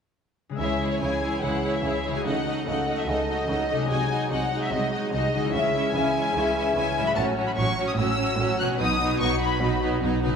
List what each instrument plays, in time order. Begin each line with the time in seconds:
0.49 harp C#3 G#3 G#4
0.56 french horn section E3 G#4, harp E5, violin section E5
0.60 double bass section C#2, cello section C#3, viola section G#3 E4, violin section G#4 C#5
0.81 viola section G#3 E4, violin section G#4 C#5
0.92 violin section C#5
1.01 double bass section C#2, cello section C#3, viola section G#3 E4, violin section G#4 C#5 G#5
1.22 viola section G#3 E4, violin section G#4 C#5
1.42 double bass section C#2, cello section C#3, viola section G#3 E4, violin section G#4 C#5 F#5
1.64 viola section G#3 E4, violin section G#4 C#5
1.74 violin section E5
1.84 double bass section C#2, cello section C#3, viola section G#3 E4, violin section G#4 C#5
2.05 harp C#3, viola section G#3 E4, violin section G#4 C#5
2.12 harp A3, violin section G#5
2.16 harp F#4
2.21 harp D#5
2.26 double bass section C#2, cello section C#3, french horn section F#3 A4, viola section A3 D#4, violin section F#4 D#5 F#5
2.45 viola section A3 D#4, violin section F#4 D#5
2.67 double bass section C#2, cello section C#3, viola section A3 D#4, violin section F#4 D#5 F#5
2.87 viola section A3 D#4, violin section F#4 D#5
2.98 violin section E5
3.08 double bass section C#2, cello section C#3, viola section A3 D#4, violin section F#4 D#5
3.28 viola section A3 D#4, violin section F#4 D#5
3.48 double bass section C#2, cello section C#3, viola section A3 D#4, violin section F#4 D#5
3.68 harp C3, viola section A3 D#4, violin section F#4 D#5
3.76 harp G#3
3.81 harp F#4
3.85 cello section C3, viola section G#3, harp D#5, violin section D#5
3.89 double bass section C2, viola section D#4, violin section F#4 G#5, french horn section G#4
4.10 viola section G#3 D#4, violin section F#4 D#5
4.30 double bass section C2, cello section C3, viola section G#3 D#4, violin section F#4 D#5 F#5
4.51 viola section G#3 D#4, violin section F#4 D#5
4.63 violin section E5
4.72 double bass section C2, cello section C3, viola section G#3 D#4, violin section F#4 D#5
4.93 viola section G#3 D#4, violin section F#4 D#5
5.13 double bass section C2, cello section C3, viola section G#3 D#4, violin section F#4 D#5
5.34 harp C#3, viola section G#3 D#4, violin section F#4 D#5
5.40 harp G#3
5.44 harp E4
5.49 harp C#5
5.54 double bass section C#2, cello section C#3, french horn section E3, viola section G#3 C#4, violin section E4 E5
5.74 viola section G#3 C#4, violin section E4 E5
5.94 double bass section C#2, cello section C#3, viola section G#3 C#4, violin section E4 E5 G#5
6.15 viola section G#3 C#4, violin section E4 E5
6.35 double bass section C#2, cello section C#3, viola section G#3 C#4, violin section E4 E5
6.56 viola section G#3 C#4, violin section E4 E5
6.75 double bass section C#2, cello section C#3, viola section G#3 C#4, violin section E4 E5 G#5
6.97 harp A2, viola section G#3 C#4, violin section E4 E5
7.03 harp F#3, violin section B5
7.07 harp F#4
7.12 french horn section F#3 F#4, harp C#5
7.16 double bass section A1, cello section A2, viola section F#3 C#4, violin section F#4 C#5 A5
7.36 viola section F#3 C#4, violin section F#4 C#5
7.47 violin section B5
7.57 double bass section A1, cello section A2, viola section F#3 C#4, violin section F#4 C#5 C#6
7.76 viola section F#3 C#4, violin section F#4 C#5
7.88 violin section D#6
7.97 double bass section A1, cello section A2, viola section F#3 C#4, violin section F#4 C#5 E6
8.17 viola section F#3 C#4, violin section F#4 C#5
8.38 double bass section A1, cello section A2, viola section F#3 C#4, violin section F#4 C#5
8.58 harp B2, viola section F#3 C#4, violin section F#4 C#5 F#6
8.66 harp F#3
8.70 harp F#4
8.75 harp B4
8.79 double bass section B1, cello section B2, viola section F#3 D#4, violin section F#4 B4 D#6
9.00 viola section F#3 D#4, violin section F#4 B4
9.19 double bass section B1, cello section B2, viola section F#3 D#4, violin section F#4 B4 C#6
9.40 viola section F#3 D#4, violin section F#4 B4 B5
9.61 double bass section B1, cello section B2, viola section F#3 D#4, violin section F#4 B4
9.81 viola section F#3 D#4, violin section F#4 B4
10.01 double bass section B1, cello section B2, viola section F#3 D#4, violin section F#4 B4
10.21 harp C#3, viola section F#3 D#4, violin section F#4 B4
10.29 harp A3